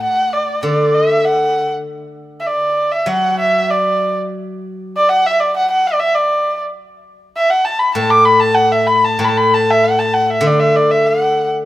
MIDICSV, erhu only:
0, 0, Header, 1, 2, 480
1, 0, Start_track
1, 0, Tempo, 611621
1, 508, Time_signature, 2, 2, 24, 8
1, 9144, End_track
2, 0, Start_track
2, 0, Title_t, "Erhu"
2, 0, Program_c, 0, 110
2, 24, Note_on_c, 0, 78, 75
2, 260, Note_on_c, 0, 74, 67
2, 272, Note_off_c, 0, 78, 0
2, 495, Note_off_c, 0, 74, 0
2, 499, Note_on_c, 0, 74, 64
2, 746, Note_on_c, 0, 76, 70
2, 758, Note_off_c, 0, 74, 0
2, 984, Note_on_c, 0, 78, 72
2, 996, Note_off_c, 0, 76, 0
2, 1342, Note_off_c, 0, 78, 0
2, 1884, Note_on_c, 0, 76, 57
2, 1935, Note_on_c, 0, 74, 68
2, 1947, Note_off_c, 0, 76, 0
2, 2289, Note_on_c, 0, 76, 69
2, 2301, Note_off_c, 0, 74, 0
2, 2416, Note_on_c, 0, 78, 82
2, 2428, Note_off_c, 0, 76, 0
2, 2660, Note_off_c, 0, 78, 0
2, 2666, Note_on_c, 0, 76, 73
2, 2911, Note_on_c, 0, 74, 62
2, 2923, Note_off_c, 0, 76, 0
2, 3273, Note_off_c, 0, 74, 0
2, 3897, Note_on_c, 0, 74, 84
2, 3996, Note_on_c, 0, 78, 83
2, 4008, Note_off_c, 0, 74, 0
2, 4132, Note_on_c, 0, 76, 83
2, 4144, Note_off_c, 0, 78, 0
2, 4238, Note_on_c, 0, 74, 74
2, 4250, Note_off_c, 0, 76, 0
2, 4355, Note_off_c, 0, 74, 0
2, 4371, Note_on_c, 0, 78, 79
2, 4473, Note_off_c, 0, 78, 0
2, 4481, Note_on_c, 0, 78, 74
2, 4611, Note_on_c, 0, 74, 77
2, 4623, Note_off_c, 0, 78, 0
2, 4709, Note_on_c, 0, 76, 81
2, 4720, Note_off_c, 0, 74, 0
2, 4826, Note_on_c, 0, 74, 71
2, 4838, Note_off_c, 0, 76, 0
2, 5185, Note_off_c, 0, 74, 0
2, 5781, Note_on_c, 0, 76, 83
2, 5885, Note_on_c, 0, 78, 76
2, 5897, Note_off_c, 0, 76, 0
2, 6004, Note_on_c, 0, 81, 77
2, 6016, Note_off_c, 0, 78, 0
2, 6117, Note_on_c, 0, 83, 72
2, 6128, Note_off_c, 0, 81, 0
2, 6233, Note_off_c, 0, 83, 0
2, 6238, Note_on_c, 0, 81, 83
2, 6360, Note_on_c, 0, 86, 88
2, 6371, Note_off_c, 0, 81, 0
2, 6477, Note_on_c, 0, 83, 81
2, 6489, Note_off_c, 0, 86, 0
2, 6595, Note_on_c, 0, 81, 93
2, 6606, Note_off_c, 0, 83, 0
2, 6708, Note_on_c, 0, 78, 87
2, 6720, Note_off_c, 0, 81, 0
2, 6843, Note_on_c, 0, 76, 75
2, 6855, Note_off_c, 0, 78, 0
2, 6962, Note_on_c, 0, 83, 81
2, 6974, Note_off_c, 0, 76, 0
2, 7100, Note_on_c, 0, 81, 73
2, 7111, Note_off_c, 0, 83, 0
2, 7221, Note_off_c, 0, 81, 0
2, 7226, Note_on_c, 0, 81, 75
2, 7256, Note_on_c, 0, 83, 58
2, 7267, Note_off_c, 0, 81, 0
2, 7285, Note_on_c, 0, 81, 76
2, 7297, Note_off_c, 0, 83, 0
2, 7356, Note_on_c, 0, 83, 77
2, 7368, Note_off_c, 0, 81, 0
2, 7486, Note_on_c, 0, 81, 83
2, 7498, Note_off_c, 0, 83, 0
2, 7619, Note_on_c, 0, 76, 86
2, 7631, Note_off_c, 0, 81, 0
2, 7723, Note_on_c, 0, 78, 77
2, 7735, Note_off_c, 0, 76, 0
2, 7839, Note_on_c, 0, 81, 73
2, 7851, Note_off_c, 0, 78, 0
2, 7957, Note_on_c, 0, 78, 79
2, 7969, Note_off_c, 0, 81, 0
2, 8051, Note_off_c, 0, 78, 0
2, 8051, Note_on_c, 0, 78, 51
2, 8086, Note_on_c, 0, 76, 70
2, 8098, Note_off_c, 0, 78, 0
2, 8214, Note_on_c, 0, 74, 67
2, 8226, Note_off_c, 0, 76, 0
2, 8320, Note_on_c, 0, 76, 74
2, 8331, Note_off_c, 0, 74, 0
2, 8445, Note_on_c, 0, 74, 66
2, 8457, Note_off_c, 0, 76, 0
2, 8562, Note_on_c, 0, 76, 74
2, 8574, Note_off_c, 0, 74, 0
2, 8686, Note_on_c, 0, 78, 71
2, 8697, Note_off_c, 0, 76, 0
2, 9033, Note_off_c, 0, 78, 0
2, 9144, End_track
0, 0, End_of_file